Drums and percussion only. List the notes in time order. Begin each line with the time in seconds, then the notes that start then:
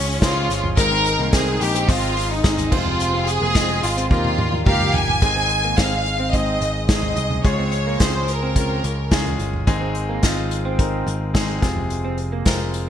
0.22 kick, snare, hi-hat pedal, open hi-hat
0.50 snare, hi-hat pedal, open hi-hat
0.64 floor tom
0.77 kick, hi-hat pedal, open hi-hat
1.05 hi-hat pedal, open hi-hat
1.32 kick, snare, hi-hat pedal, open hi-hat
1.47 open hi-hat
1.61 hi-hat pedal, open hi-hat
1.75 hi-hat pedal
1.89 kick, hi-hat pedal, open hi-hat
2.17 hi-hat pedal, open hi-hat
2.30 open hi-hat
2.44 kick, snare, hi-hat pedal, open hi-hat
2.58 floor tom, hi-hat pedal
2.72 kick, crash
2.86 floor tom
3.00 hi-hat pedal, open hi-hat
3.27 hi-hat pedal, open hi-hat
3.55 kick, snare, hi-hat pedal, open hi-hat
3.69 open hi-hat
3.83 hi-hat pedal, open hi-hat
3.97 hi-hat pedal
4.11 kick, high tom
4.24 high tom
4.38 mid tom
4.52 mid tom
4.66 kick, mid tom
4.80 mid tom
4.94 floor tom
5.08 floor tom
5.22 kick, closed hi-hat
5.49 closed hi-hat
5.77 kick, snare, closed hi-hat
6.06 closed hi-hat
6.33 kick, closed hi-hat
6.62 closed hi-hat
6.89 kick, snare, closed hi-hat
7.03 floor tom
7.16 closed hi-hat
7.30 floor tom
7.44 kick, closed hi-hat
7.72 closed hi-hat
8.00 kick, snare, closed hi-hat
8.28 closed hi-hat
8.56 kick, closed hi-hat
8.84 closed hi-hat
9.11 kick, snare, closed hi-hat
9.26 floor tom
9.39 closed hi-hat
9.53 floor tom
9.67 kick, closed hi-hat
9.95 closed hi-hat
10.23 kick, snare, closed hi-hat
10.51 closed hi-hat
10.79 kick, closed hi-hat
11.07 closed hi-hat
11.35 kick, snare, closed hi-hat
11.62 kick, snare, closed hi-hat
11.76 floor tom
11.90 closed hi-hat
12.18 closed hi-hat
12.45 kick, snare, closed hi-hat
12.74 closed hi-hat